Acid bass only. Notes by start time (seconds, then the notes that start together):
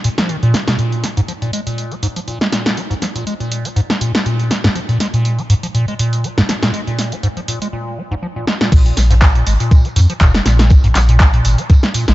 0.05 A#2
0.18 F3
0.29 D#3
0.43 A#2
0.54 A#3
0.68 B2
0.79 A#2
1.04 G#3
1.17 G#2
1.28 F3
1.42 A#2
1.53 G#3
1.67 A#2
1.91 G#3
2.03 G#2
2.16 F3
2.28 A#2
2.41 G#3
2.52 A#2
2.77 G#3
2.91 G#2
3.02 F3
3.15 A#2
3.27 G#3
3.40 A#2
3.65 G#3
3.76 G#2
3.90 F3
4.01 A#2
4.15 G#3
4.26 A#2
4.51 G#3
4.64 G#2
4.75 F3
4.89 A#2
5.00 G#3
5.14 A#2
5.38 G#3
5.50 G#2
5.63 F3
5.75 A#2
5.88 G#3
5.99 A#2
6.24 G#3
6.38 G#2
6.49 F3
6.63 A#2
6.74 G#3
6.87 A#2
7.12 G#3
7.23 G#2
7.37 F3
7.48 A#2
7.62 G#3
7.73 A#2
7.98 G#3
8.11 G#2
8.23 F3
8.36 A#2
8.47 G#3
8.61 A#2
8.97 G#3
9.10 G#2
9.22 F3
9.35 A#2
9.47 G#3
9.60 A#2
9.85 G#3
9.96 G#2
10.10 F3
10.21 A#2
10.34 G#3
10.46 A#2
10.71 G#3
10.84 G#2
10.95 F3
11.09 A#2
11.34 A#2
11.58 G#3
11.70 G#2
11.83 F3
11.95 A#2
12.08 G#3